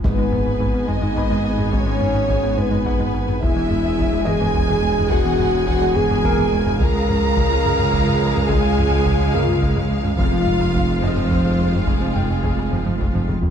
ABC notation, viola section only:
X:1
M:6/8
L:1/8
Q:3/8=71
K:G#m
V:1 name="Viola section"
[B,G]6- | [B,G]6 | [G,G]6- | [G,G]6 |
[G,G]6- | [G,G]6 | [_A,=F]6- | [_A,=F]4- [A,F] z |]